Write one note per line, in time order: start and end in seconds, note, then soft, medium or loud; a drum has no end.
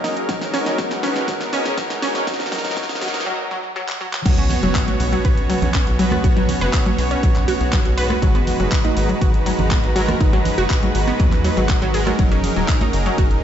0.00 0.23 F#1 loud
0.00 0.25 F#3 medium
0.00 0.27 F#3 medium
0.00 0.25 C#4 medium
0.00 0.27 D#4 medium
0.00 3.22 D#4 medium
0.00 0.13 D#4 medium
0.00 0.25 G#4 medium
0.00 0.27 A#4 medium
0.00 3.22 A#5 medium
0.04 snare medium
0.04 open hi-hat medium
0.17 closed hi-hat soft
0.29 0.60 G#1 loud
0.29 0.37 F#3 medium
0.29 0.63 F#3 medium
0.29 3.23 G#3 medium
0.29 3.23 B3 medium
0.29 0.63 D#4 medium
0.29 3.23 F#4 medium
0.29 0.63 A#4 medium
0.29 kick loud
0.29 snare loud
0.29 closed hi-hat medium
0.41 snare medium
0.41 closed hi-hat soft
0.54 0.66 C#4 loud
0.54 snare medium
0.54 open hi-hat loud
0.66 0.75 F#1 loud
0.66 0.76 F#3 medium
0.66 0.76 D#4 medium
0.66 0.76 A#4 medium
0.66 snare medium
0.66 closed hi-hat soft
0.78 0.87 F#3 medium
0.78 1.13 F#3 medium
0.78 1.13 D#4 medium
0.78 1.13 A#4 medium
0.78 kick loud
0.78 snare medium
0.78 closed hi-hat medium
0.91 snare medium
0.91 closed hi-hat soft
1.03 1.21 G#1 medium
1.03 1.15 C#4 loud
1.03 snare loud
1.03 open hi-hat medium
1.16 1.26 F#3 medium
1.16 1.26 D#4 medium
1.16 1.26 A#4 medium
1.16 snare medium
1.16 closed hi-hat soft
1.28 1.60 G#1 medium
1.28 1.37 F#3 medium
1.28 1.62 F#3 medium
1.28 1.62 D#4 medium
1.28 1.62 A#4 medium
1.28 kick loud
1.28 snare loud
1.28 closed hi-hat medium
1.41 snare medium
1.41 closed hi-hat soft
1.53 1.65 C#4 loud
1.53 snare medium
1.53 open hi-hat medium
1.65 1.83 G#1 loud
1.65 1.76 F#3 medium
1.65 1.76 D#4 medium
1.65 1.76 A#4 medium
1.65 snare medium
1.65 closed hi-hat soft
1.78 1.86 F#3 medium
1.78 2.12 F#3 medium
1.78 2.12 D#4 medium
1.78 2.12 A#4 medium
1.78 kick loud
1.78 snare loud
1.78 closed hi-hat medium
1.90 2.21 G#1 loud
1.90 snare medium
1.90 closed hi-hat soft
2.02 2.14 C#4 loud
2.02 snare loud
2.02 open hi-hat medium
2.15 2.25 F#3 medium
2.15 2.25 D#4 medium
2.15 2.25 A#4 medium
2.15 snare medium
2.15 closed hi-hat soft
2.27 2.59 G#1 loud
2.27 2.36 F#3 medium
2.27 2.50 F#3 medium
2.27 2.50 D#4 medium
2.27 2.50 A#4 medium
2.27 kick loud
2.27 snare loud
2.27 closed hi-hat medium
2.34 snare medium
2.40 snare medium
2.40 closed hi-hat soft
2.46 snare medium
2.52 2.61 F#3 medium
2.52 2.75 F#3 medium
2.52 2.75 D#4 medium
2.52 2.75 A#4 medium
2.52 snare loud
2.52 open hi-hat loud
2.58 snare medium
2.65 2.73 F#1 loud
2.65 snare loud
2.65 closed hi-hat soft
2.71 snare loud
2.77 2.85 F#3 medium
2.77 3.00 F#3 medium
2.77 3.00 D#4 medium
2.77 3.00 A#4 medium
2.77 kick loud
2.77 snare loud
2.77 closed hi-hat medium
2.83 snare medium
2.89 snare loud
2.89 closed hi-hat soft
2.95 snare medium
3.01 3.19 G#1 medium
3.01 3.10 F#3 medium
3.01 3.24 F#3 medium
3.01 3.24 D#4 medium
3.01 3.24 A#4 medium
3.01 snare loud
3.01 open hi-hat medium
3.08 snare loud
3.14 snare medium
3.14 closed hi-hat soft
3.20 snare loud
3.26 3.35 F#3 medium
3.51 3.60 F#3 medium
3.76 3.85 F#3 medium
3.89 clap medium
4.01 4.09 F#3 medium
4.13 clap loud
4.25 4.57 B1 loud
4.25 4.60 B2 medium
4.25 4.34 F#3 medium
4.25 8.18 B3 medium
4.25 4.60 B3 medium
4.25 8.18 C#4 medium
4.25 12.15 F#4 medium
4.25 4.60 F#4 medium
4.25 4.60 C#5 medium
4.25 kick loud
4.25 closed hi-hat medium
4.25 ride medium
4.25 crash loud
4.25 impact medium
4.38 4.47 C#4 medium
4.38 closed hi-hat soft
4.50 open hi-hat loud
4.50 ride medium
4.50 low conga medium
4.63 4.72 F#1 loud
4.63 5.96 B2 medium
4.63 4.75 F#3 medium
4.63 5.96 B3 medium
4.63 5.96 F#4 medium
4.63 5.96 C#5 medium
4.63 closed hi-hat soft
4.75 kick loud
4.75 clap loud
4.75 closed hi-hat medium
4.88 4.96 F#4 medium
4.88 closed hi-hat soft
4.88 high conga medium
5.00 5.18 B1 medium
5.00 open hi-hat loud
5.00 ride medium
5.13 5.18 F#3 medium
5.13 closed hi-hat soft
5.25 5.56 B1 medium
5.25 5.37 B4 medium
5.25 kick loud
5.25 closed hi-hat medium
5.25 ride medium
5.37 closed hi-hat soft
5.50 5.58 F#3 medium
5.50 open hi-hat loud
5.50 ride medium
5.50 high conga medium
5.62 5.79 B1 loud
5.62 closed hi-hat soft
5.62 low conga loud
5.74 5.79 C#4 medium
5.74 kick loud
5.74 clap loud
5.74 closed hi-hat medium
5.74 ride medium
5.87 6.18 B1 medium
5.87 closed hi-hat soft
5.99 6.12 B2 loud
5.99 6.04 F#3 loud
5.99 6.12 B3 medium
5.99 6.12 F#4 medium
5.99 6.12 B4 loud
5.99 open hi-hat medium
5.99 ride medium
6.11 cross-stick medium
6.11 closed hi-hat soft
6.11 high conga loud
6.11 low conga medium
6.24 6.55 B1 loud
6.24 6.58 B2 medium
6.24 6.58 B3 medium
6.24 6.58 F#4 medium
6.24 6.36 F#4 medium
6.24 6.58 C#5 medium
6.24 kick loud
6.24 closed hi-hat medium
6.24 ride medium
6.37 6.48 F#3 loud
6.37 closed hi-hat soft
6.48 open hi-hat loud
6.48 ride medium
6.48 low conga medium
6.61 6.70 F#1 loud
6.61 7.95 B2 medium
6.61 7.95 B3 medium
6.61 7.95 F#4 medium
6.61 6.66 B4 loud
6.61 7.95 C#5 medium
6.61 closed hi-hat soft
6.73 kick loud
6.73 clap loud
6.73 closed hi-hat medium
6.73 ride medium
6.86 6.91 F#3 medium
6.86 closed hi-hat soft
6.86 high conga medium
6.98 7.16 B1 medium
6.98 open hi-hat loud
6.98 ride medium
7.11 7.16 C#4 medium
7.11 closed hi-hat soft
7.23 7.55 B1 medium
7.23 7.35 F#3 medium
7.23 kick loud
7.23 closed hi-hat medium
7.23 ride medium
7.36 clap soft
7.36 closed hi-hat soft
7.36 low conga medium
7.48 7.53 F#4 medium
7.48 open hi-hat loud
7.48 ride medium
7.48 high conga medium
7.61 7.78 B1 medium
7.61 closed hi-hat soft
7.73 7.78 F#3 medium
7.73 kick loud
7.73 clap loud
7.73 closed hi-hat medium
7.73 ride medium
7.85 8.16 B1 loud
7.85 closed hi-hat soft
7.97 8.10 G#2 loud
7.97 8.10 B3 medium
7.97 8.10 F#4 medium
7.97 8.10 B4 loud
7.97 8.06 B4 loud
7.97 open hi-hat loud
7.97 ride medium
8.10 cross-stick medium
8.10 closed hi-hat soft
8.10 high conga medium
8.22 8.54 G#1 loud
8.22 8.57 G#2 medium
8.22 8.31 F#3 medium
8.22 12.15 G#3 medium
8.22 8.57 G#3 medium
8.22 13.44 D#4 medium
8.22 8.57 F#4 medium
8.22 12.15 B4 medium
8.22 8.57 B4 medium
8.22 12.15 A#5 medium
8.22 kick loud
8.22 closed hi-hat medium
8.22 ride medium
8.35 8.43 B3 medium
8.35 closed hi-hat soft
8.47 open hi-hat loud
8.47 ride medium
8.47 low conga medium
8.60 8.68 F#1 medium
8.60 9.93 G#2 medium
8.60 8.71 F#3 medium
8.60 9.93 G#3 medium
8.60 9.93 F#4 medium
8.60 9.93 B4 medium
8.60 closed hi-hat soft
8.72 kick loud
8.72 clap loud
8.72 closed hi-hat medium
8.72 ride medium
8.84 8.93 D#4 medium
8.84 closed hi-hat soft
8.84 high conga loud
8.97 9.14 G#1 loud
8.97 open hi-hat loud
8.97 ride medium
9.09 9.14 F#3 medium
9.09 closed hi-hat soft
9.21 9.53 G#1 medium
9.21 9.33 F#4 medium
9.21 kick loud
9.21 closed hi-hat medium
9.21 ride medium
9.34 closed hi-hat soft
9.46 9.55 F#3 medium
9.46 open hi-hat loud
9.46 ride medium
9.46 high conga medium
9.59 9.76 G#1 medium
9.59 closed hi-hat soft
9.59 low conga medium
9.71 9.76 B3 medium
9.71 kick loud
9.71 clap loud
9.71 closed hi-hat medium
9.71 ride medium
9.84 10.15 G#1 loud
9.84 closed hi-hat soft
9.96 10.09 G#2 loud
9.96 10.01 F#3 loud
9.96 10.09 G#3 medium
9.96 10.09 F#4 medium
9.96 10.09 A#4 loud
9.96 open hi-hat loud
9.96 ride medium
10.08 cross-stick medium
10.08 closed hi-hat soft
10.08 high conga medium
10.08 low conga medium
10.21 10.52 G#1 medium
10.21 10.55 G#2 medium
10.21 10.55 G#3 medium
10.21 10.33 D#4 medium
10.21 10.55 F#4 medium
10.21 10.55 B4 medium
10.21 kick loud
10.21 closed hi-hat medium
10.21 ride medium
10.33 10.45 F#3 loud
10.33 closed hi-hat soft
10.45 open hi-hat loud
10.45 ride medium
10.45 low conga medium
10.58 10.67 F#1 medium
10.58 11.91 G#2 medium
10.58 11.91 G#3 medium
10.58 10.63 F#4 loud
10.58 11.91 F#4 medium
10.58 11.91 B4 medium
10.58 closed hi-hat soft
10.70 kick loud
10.70 clap loud
10.70 closed hi-hat medium
10.83 10.88 F#3 medium
10.83 closed hi-hat soft
10.83 high conga medium
10.95 11.13 G#1 medium
10.95 open hi-hat loud
10.95 ride medium
11.07 11.13 B3 medium
11.07 closed hi-hat soft
11.20 11.51 D#2 loud
11.20 11.32 F#3 medium
11.20 kick loud
11.20 closed hi-hat medium
11.20 ride medium
11.32 clap soft
11.32 closed hi-hat soft
11.32 low conga medium
11.44 11.50 F#3 medium
11.44 open hi-hat loud
11.44 ride medium
11.44 high conga medium
11.57 11.75 G#1 medium
11.57 11.62 F#3 medium
11.57 closed hi-hat soft
11.69 kick loud
11.69 clap loud
11.69 closed hi-hat medium
11.69 ride medium
11.82 12.13 G#1 medium
11.82 11.94 F#3 loud
11.82 closed hi-hat soft
11.94 12.07 G#3 loud
11.94 12.07 F#4 medium
11.94 11.99 G#4 medium
11.94 12.07 A#4 loud
11.94 open hi-hat loud
11.94 ride medium
12.07 12.15 F#3 medium
12.07 cross-stick medium
12.07 closed hi-hat soft
12.07 high conga medium
12.19 12.50 F#1 loud
12.19 12.28 F#3 medium
12.19 13.44 F#3 medium
12.19 12.53 F#3 medium
12.19 13.44 C#4 medium
12.19 12.53 D#4 medium
12.19 13.44 G#4 medium
12.19 13.44 A#4 medium
12.19 12.53 A#4 medium
12.19 kick loud
12.19 closed hi-hat medium
12.19 ride medium
12.32 12.40 C#4 medium
12.32 closed hi-hat soft
12.44 open hi-hat loud
12.44 ride medium
12.44 low conga medium
12.56 12.65 D#1 medium
12.56 12.68 F#3 medium
12.56 13.44 F#3 medium
12.56 13.44 D#4 medium
12.56 13.44 A#4 medium
12.56 closed hi-hat soft
12.68 kick loud
12.68 clap loud
12.68 closed hi-hat medium
12.68 ride medium
12.81 12.89 D#4 medium
12.81 closed hi-hat soft
12.81 high conga medium
12.93 13.11 F#1 medium
12.93 open hi-hat loud
12.93 ride medium
13.06 13.11 F#3 medium
13.06 closed hi-hat soft
13.18 13.44 F#1 medium
13.18 13.30 F#4 medium
13.18 kick loud
13.18 closed hi-hat medium
13.18 ride medium
13.31 closed hi-hat soft